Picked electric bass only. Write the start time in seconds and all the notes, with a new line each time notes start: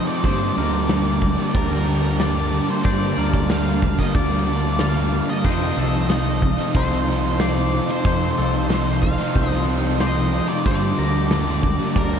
0.24 G2
0.57 D2
1.55 D2
2.85 G2
3.17 D2
4.15 D2
5.45 F2
5.77 C2
6.75 C2
8.05 F2
8.38 C2
9.36 C2
10.66 G2
10.98 D2
11.96 D2